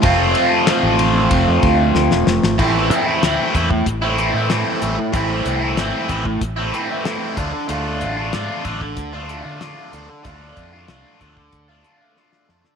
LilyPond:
<<
  \new Staff \with { instrumentName = "Overdriven electric guitar" } { \time 4/4 \tempo 4 = 94 <f a c' f'>1 | <a, e a c' e'>8. <a c' e'>16 <a, e a c' e'>8 <e a c' e'>8. <a c' e'>16 <e a c' e'>16 <a c' e'>16 <a, e a c' e'>8 <e a c' e'>8 | <a, e a c' e'>8. <a c' e'>16 <a, e a c' e'>8 <e a c' e'>8. <a c' e'>16 <e a c' e'>16 <a c' e'>16 <a, e a c' e'>8 <d a d' f'>8 | <d a d' f'>8. <a d' f'>16 <d a d' f'>8 <d a d' f'>8. <a d' f'>16 <d a d' f'>16 <a d' f'>16 <d a d' f'>8 <d a d' f'>8 |
<d a d' f'>8. <a d' f'>16 <d a d' f'>8 <d a d' f'>8. <a d' f'>16 <d a d' f'>16 <a d' f'>16 <d a d' f'>8 <d a d' f'>8 | }
  \new Staff \with { instrumentName = "Fingered electric bass" } { \clef bass \time 4/4 f,,8 r8. a,,8. f,,16 f,16 d,8 d,16 e,,16 f,,16 gis,,16 | a,,8 e,8 d,16 r16 e,8 a,,8. a,8 r16 a,,16 r16 | a,,8 c,8 gis,,16 r16 a,,8 a,,8 r4 d,16 r16 | d,8 a,,8 gis,16 r16 a,,8 d,8. d8 r16 d,16 r16 |
d,8 f,8 c,16 r16 d,8 d,8 r4 f,16 r16 | }
  \new DrumStaff \with { instrumentName = "Drums" } \drummode { \time 4/4 <bd cymr>8 cymr8 <cymr sn>8 cymr8 <bd cymr>8 <bd cymr>8 sn16 sn16 sn16 sn16 | <cymc bd>8 hh8 <hh sn>8 <hh bd>16 bd16 <hh bd>8 hh8 <hh sn>8 hh8 | <hh bd>8 hh8 <hh sn>8 <hh bd>16 bd16 <hh bd>8 hh8 <hh sn>8 <hh bd>8 | hh8 hh8 <hh sn>8 <hh bd>16 bd16 <hh bd>8 hh8 <hh sn>8 hh8 |
<hh bd>8 <hh bd>8 <hh sn>8 <hh bd>16 bd16 <hh bd>8 hh8 sn16 sn16 sn16 sn16 | }
>>